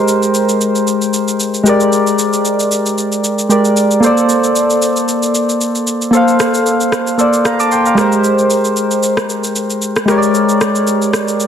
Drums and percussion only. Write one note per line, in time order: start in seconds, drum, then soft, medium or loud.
0.08 shaker medium
0.23 shaker medium
0.35 shaker medium
0.49 shaker medium
0.61 shaker medium
0.75 shaker medium
0.87 shaker medium
1.02 shaker medium
1.14 shaker medium
1.28 shaker medium
1.40 shaker medium
1.54 shaker medium
1.66 shaker medium
1.81 shaker medium
1.93 shaker medium
2.07 shaker soft
2.19 shaker medium
2.33 shaker medium
2.45 shaker medium
2.60 shaker medium
2.72 shaker medium
2.86 shaker medium
2.98 shaker medium
3.12 shaker medium
3.24 shaker medium
3.39 shaker medium
3.50 shaker medium
3.65 shaker soft
3.77 shaker medium
3.91 shaker medium
4.03 shaker medium
4.18 shaker soft
4.29 shaker medium
4.44 shaker medium
4.56 shaker medium
4.70 shaker medium
4.82 shaker medium
4.96 shaker medium
5.09 shaker medium
5.23 shaker medium
5.35 shaker medium
5.49 shaker medium
5.61 shaker medium
5.75 shaker medium
5.87 shaker medium
6.02 shaker medium
6.14 shaker medium
6.28 shaker medium
6.40 cross-stick medium
6.40 shaker medium
6.54 shaker medium
6.66 shaker medium
6.81 shaker medium
6.92 cross-stick medium
6.92 shaker medium
7.07 shaker soft
7.19 shaker medium
7.33 shaker medium
7.45 cross-stick medium
7.45 shaker medium
7.60 shaker medium
7.72 shaker medium
7.86 shaker soft
7.98 cross-stick medium
7.98 shaker medium
8.12 shaker medium
8.24 shaker medium
8.39 shaker soft
8.50 shaker medium
8.65 shaker medium
8.77 shaker medium
8.91 shaker medium
9.03 shaker medium
9.17 cross-stick medium
9.17 shaker medium
9.30 shaker medium
9.44 shaker medium
9.56 shaker medium
9.70 shaker medium
9.82 shaker medium
9.96 cross-stick medium
9.96 shaker medium
10.08 cross-stick medium
10.08 shaker medium
10.23 shaker medium
10.35 shaker medium
10.49 shaker medium
10.61 cross-stick medium
10.61 shaker medium
10.75 shaker medium
10.87 shaker medium
11.02 shaker medium
11.13 cross-stick medium
11.13 shaker medium
11.28 shaker medium
11.40 shaker medium